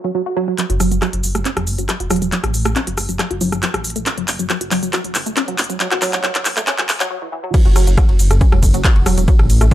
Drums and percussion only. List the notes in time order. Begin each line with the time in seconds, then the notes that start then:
0.58 clap, closed hi-hat, shaker
0.70 closed hi-hat
0.80 cross-stick, open hi-hat, shaker
0.92 closed hi-hat, shaker
1.02 cross-stick, clap, closed hi-hat, shaker
1.13 closed hi-hat
1.24 open hi-hat, shaker
1.35 cross-stick, closed hi-hat, shaker
1.45 clap, closed hi-hat, shaker
1.57 cross-stick, closed hi-hat
1.67 open hi-hat, shaker
1.78 closed hi-hat, shaker
1.89 cross-stick, clap, closed hi-hat, shaker
2.00 closed hi-hat
2.10 cross-stick, open hi-hat, shaker
2.16 closed hi-hat
2.22 closed hi-hat, shaker
2.32 clap, closed hi-hat, shaker
2.44 cross-stick, closed hi-hat
2.54 open hi-hat, shaker
2.65 cross-stick, closed hi-hat, shaker
2.76 clap, closed hi-hat, shaker
2.87 closed hi-hat
2.98 cross-stick, open hi-hat, shaker
3.09 closed hi-hat, shaker
3.19 cross-stick, clap, closed hi-hat, shaker
3.31 closed hi-hat
3.41 open hi-hat, shaker
3.52 cross-stick, closed hi-hat, shaker
3.63 clap, closed hi-hat, shaker
3.74 cross-stick, closed hi-hat
3.84 open hi-hat, shaker
3.90 closed hi-hat
3.96 closed hi-hat, shaker
4.06 clap, closed hi-hat, shaker
4.18 closed hi-hat
4.28 clap, open hi-hat, shaker
4.39 closed hi-hat, shaker
4.50 clap, closed hi-hat, shaker
4.61 closed hi-hat
4.71 clap, open hi-hat, shaker
4.83 closed hi-hat, shaker
4.93 clap, closed hi-hat, shaker
5.04 closed hi-hat
5.15 clap, open hi-hat, shaker
5.26 closed hi-hat, shaker
5.37 clap, closed hi-hat, shaker
5.48 closed hi-hat
5.58 clap, open hi-hat, shaker
5.64 closed hi-hat
5.70 closed hi-hat, shaker
5.80 clap, closed hi-hat, shaker
5.91 clap, closed hi-hat
6.02 clap, open hi-hat, shaker
6.13 clap, closed hi-hat, shaker
6.24 clap, closed hi-hat, shaker
6.35 clap, closed hi-hat
6.45 clap, open hi-hat, shaker
6.57 clap, closed hi-hat, shaker
6.67 clap, closed hi-hat, shaker
6.78 clap, closed hi-hat
6.89 clap, open hi-hat, shaker
7.00 clap, closed hi-hat, shaker
7.54 kick, closed hi-hat, ride, crash, shaker
7.65 ride
7.76 cross-stick, open hi-hat, ride, shaker
7.87 closed hi-hat, ride, shaker
7.97 kick, cross-stick, closed hi-hat, ride, shaker
8.09 ride
8.19 open hi-hat, ride, shaker
8.31 cross-stick, closed hi-hat, ride, shaker
8.41 kick, closed hi-hat, ride, shaker
8.52 cross-stick, ride
8.63 kick, open hi-hat, ride, shaker
8.74 closed hi-hat, ride, shaker
8.84 kick, cross-stick, clap, closed hi-hat, ride, shaker
8.96 ride
9.06 cross-stick, open hi-hat, ride, shaker
9.18 closed hi-hat, ride, shaker
9.28 kick, closed hi-hat, ride, shaker
9.39 cross-stick, ride
9.50 open hi-hat, ride, shaker
9.61 cross-stick, closed hi-hat, ride, shaker